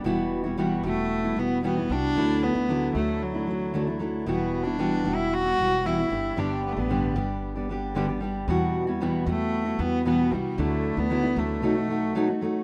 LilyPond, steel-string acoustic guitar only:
\new Staff \with { instrumentName = "Steel-string acoustic guitar" } { \time 4/4 \key e \minor \tempo 4 = 114 <e, b, g b e' fis'>8. <g b e' fis'>16 <e, b, g b e' fis'>8 <g b e' fis'>8. <g b e' fis'>16 <g b e' fis'>8 <e, b, g b e' fis'>16 <g b e' fis'>16 <g b e' fis'>8 | <d fis a d' e'>8. <a d' e'>16 <d fis a d' e'>8 <fis a d' e'>8. <a d' e'>16 <fis a d' e'>8 <d fis a d' e'>16 <a d' e'>16 <fis a d' e'>8 | <e, b, g b e' fis'>8. <g b e' fis'>16 <e, b, g b e' fis'>8 <g b e' fis'>8. <g b e' fis'>16 <g b e' fis'>8 <e, b, g b e' fis'>16 <g b e' fis'>16 <g b d' g'>8 | <g, d g b d' g'>8. <g b d' g'>16 <g, d g b d' g'>8 <g b d' g'>8. <g b d' g'>16 <g b d' g'>8 <g, d g b d' g'>16 <g b d' g'>16 <g b d' g'>8 |
<e, b, g b e' fis'>8. <g b e' fis'>16 <e, b, g b e' fis'>8 <g b e' fis'>8. <g b e' fis'>16 <g b e' fis'>8 <e, b, g b e' fis'>8 <g b e' fis'>8 | <d fis a d' e'>8. <a d' e'>16 <d fis a d' e'>16 <a d' e'>16 <fis a d' e'>8 <b, fis a dis' fis'>16 <a dis' fis'>16 <fis a dis' fis'>8 <b, fis a dis' fis'>16 <a dis' fis'>16 <fis a dis' fis'>8 | }